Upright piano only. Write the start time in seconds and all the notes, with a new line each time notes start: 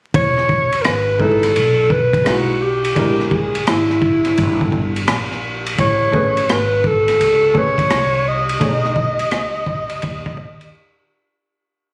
1.19 G#3 D#4 E4 B4
2.24 G#3 D#4 E4 B4
2.95 G#3 D4 E4 A#4
6.12 A3 C#4 G#4 B4
7.54 A3 C#4 G#4 B4
8.59 A3 D4 G#4 C#5
8.67 D#4